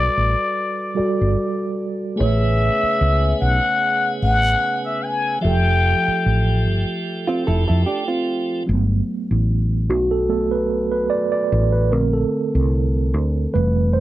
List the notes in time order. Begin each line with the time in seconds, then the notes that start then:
Already playing: G3 F#4 A4 B4 D5
0.17 A1
0.95 G3 F#4 A4 D5
0.99 muted fretless electric bass stroke
1.21 G1
2.16 C#3 A3 B3 G#4 B4 E5
2.20 A1 C#5
2.83 muted fretless electric bass stroke
3.01 C#2
3.41 B1 F#5
4.22 A1 F#5
4.86 E5
5.04 G#5
5.41 F1 F3 A3 G4 E5
5.45 A4 G5
6.08 muted fretless electric bass stroke
6.26 A1
6.67 G1
7.27 C4 F4
7.47 F1 E4 A4
7.68 F2 E4 A4
7.86 D4 G4
8.08 C4 F4
8.67 G1 F#3 A3 B3
9.31 A1
9.90 B1 F#4
10.11 A4
10.29 F#3 A3 B3 A4
10.51 B4
10.92 B4
11.10 D5
11.32 D5
11.52 A1
11.73 B4
11.91 A#1 D3 A3 C4 A#4
12.13 A4
12.55 C2
13.14 D2
13.53 F1 E3 G3 A3 B4
13.93 C5